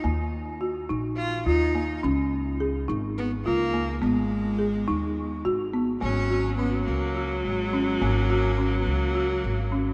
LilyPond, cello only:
\new Staff \with { instrumentName = "Cello" } { \time 7/8 \key fis \major \tempo 4 = 106 r2 eis'8 dis'4 | r2 b8 ais4 | gis2~ gis8 r4 | cis'4 b8 ais4 gis4 |
ais4~ ais16. b32 ais4. r8 | }